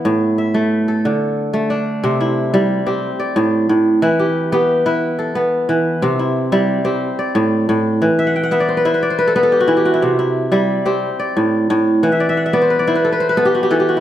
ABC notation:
X:1
M:12/8
L:1/16
Q:3/8=120
K:Em
V:1 name="Kora"
E2 z2 e6 A4 z6 D4 | C2 E4 E4 G4 d6 z4 | E2 G4 G4 B4 A6 z4 | C2 E4 E4 G4 d6 z4 |
z2 e f g f e d c B c B d c B A B A G F E G F E- | E z E4 E4 G4 d6 z4 | f e d e f e d c B d c B A B c B A G F G A G F E |]
V:2 name="Kora" clef=bass
A,,4 z2 A,4 z2 D,4 z2 A,4 z2 | C,4 z2 G,4 C2 z4 A,,4 A,,4 | E,4 z2 B,4 E4 z2 B,4 E,4 | C,4 z2 G,4 C2 z4 A,,4 A,,4 |
E,4 z2 B,4 E4 z2 B,4 E,4 | C,4 z2 G,4 C2 z4 A,,4 A,,4 | E,4 z2 B,4 E4 z2 B,4 E,4 |]